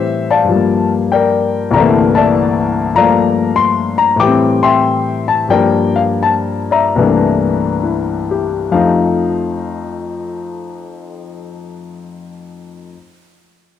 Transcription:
Already playing: A2 E3 G3 C4 G4 C5 E5
0.31 D5 F5 A5
0.44 G2
0.49 F3 G3
0.56 A#3
1.12 A#4 D5 G5
1.71 C2 G2 A#5
1.75 D3 E3 A3 D5 E5
1.80 A#3
2.15 D5 E5 A5
2.95 G2 F3 A3 D5 F5 A#5
3.00 A#3
3.56 C6
3.98 A#5
4.16 A2 D6
4.20 E3 G3 G5
4.27 C4
4.63 E5 G5 C6
5.28 A5
5.49 G2 F3 G3 A#4 D5 G5
5.54 A#3
5.96 F5
6.22 A5
6.71 D5 E5 A#5
6.96 C2 G2 E3 A3 A#3
7.01 D4
7.83 E4
8.31 G4
8.71 F2 F3 A3 D#4 F5

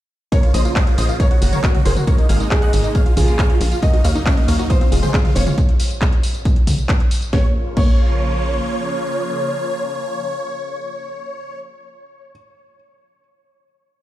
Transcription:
0.32 C#3 F3 A#3 F4 A#4 C#5 C#6, kick, closed hi-hat, tambourine
0.43 F4 F5, closed hi-hat
0.54 A#1 C#3 F3 A#3 F4 C5 D#5 D#6, open hi-hat, tambourine
0.65 F4 F5, closed hi-hat, tambourine
0.76 C5 D#5 D#6, kick, clap, closed hi-hat, tambourine
0.87 C#3 F3 A#3 F4 F5, closed hi-hat
0.98 A#1 C#3 F3 A#3 F4 C5 D#5 D#6, open hi-hat, tambourine
1.09 F4 F5, closed hi-hat, tambourine
1.20 A#4 C#5 C#6, kick, closed hi-hat, tambourine
1.31 F#4 F#5, closed hi-hat
1.41 F#1 C#3 F#3 A#3 F#4 F#5, open hi-hat, tambourine
1.52 C#3 F#3 A#3 F#4 A#4 C#5 C#6, mid tom, tambourine
1.64 C#3 F#3 A#3 F#4 F#5, kick, clap, closed hi-hat, tambourine
1.75 F#4 F#5, closed hi-hat, mid tom
1.85 F#1 G#4 A#4 C5 C6, open hi-hat, tambourine
1.96 F#4 F#5, mid tom, tambourine
2.07 C3 G#3 A#3 D#4 A#4 C#5 C#6, kick, closed hi-hat, tambourine
2.18 D#4 D#5, closed hi-hat
2.29 G#1 C3 G#3 A#3 D#4 G#4 F5 F6, open hi-hat, tambourine
2.40 D#4 D#5, closed hi-hat, tambourine
2.51 D#4 G#4 D#5, kick, clap, closed hi-hat, tambourine
2.62 C3 G#3 A#3 D#4 D#5 F#5 F#6, closed hi-hat
2.73 G#1 C3 G#3 A#3 D#4 D#5, open hi-hat, tambourine
2.84 D#4 D#5, closed hi-hat, tambourine
2.95 C#5 F5 F6, kick, closed hi-hat, tambourine
3.06 F4 F5, closed hi-hat
3.17 A#1 C#3 F3 A#3 F4 G#4 F5, kick, open hi-hat, mid tom, tambourine
3.27 C#3 F3 A#3 F4 F5, closed hi-hat, tambourine
3.38 C#3 C#5 F5 F6, kick, clap, closed hi-hat, tambourine
3.50 F4 F5, closed hi-hat
3.61 A#1 F4 F5, open hi-hat, tambourine
3.71 F4 F5, closed hi-hat, tambourine
3.82 C#3 F#3 A#3 D#4 F#4 A#4 D#5 D#6, kick, closed hi-hat, tambourine
3.93 D#4 F#4 D#5, closed hi-hat
4.04 D#2 C#3 F#3 A#3 D#4 C#5 F5 F6, open hi-hat, tambourine
4.15 D#4 D#5, closed hi-hat, tambourine
4.26 C#4 C#5 F5 F6, kick, clap, closed hi-hat, tambourine
4.37 C#3 F#3 A#3 D#4 D#5, closed hi-hat
4.48 D#2 C#3 F#3 A#3 D#4 A#4 C#5 F5 F6, open hi-hat, tambourine
4.59 D#4 F#4 D#5, closed hi-hat, tambourine
4.70 F4 C5 D#5 D#6, kick, closed hi-hat, tambourine
4.81 C4 F4 F5, closed hi-hat
4.92 F1 C3 F3 G#3 F4 F5, open hi-hat, tambourine
5.03 C3 F3 G#3 F4 G#4 C5 C6, closed hi-hat, mid tom, tambourine
5.14 C3 F3 G#3 F4 G#4 F5, kick, clap, closed hi-hat, tambourine
5.24 F4 F5, closed hi-hat, mid tom
5.35 F1 C4 F4 C#5 C#6, open hi-hat, tambourine
5.46 G#3 F4 F5, closed hi-hat, mid tom, tambourine
5.58 kick, closed hi-hat, tambourine
5.69 closed hi-hat
5.80 open hi-hat, tambourine
5.91 closed hi-hat, tambourine
6.02 kick, clap, closed hi-hat, tambourine
6.13 closed hi-hat
6.23 open hi-hat, tambourine
6.34 closed hi-hat, tambourine
6.45 kick, closed hi-hat, tambourine
6.56 closed hi-hat
6.67 kick, open hi-hat, mid tom, tambourine
6.78 closed hi-hat, tambourine
6.89 kick, clap, closed hi-hat, tambourine
7.00 closed hi-hat
7.11 open hi-hat, tambourine
7.22 closed hi-hat, tambourine
7.33 A#1 F3 A#3 F4 C#5 C#6, kick, snare
7.77 A#1 A#3 C#5 C#6, kick, crash

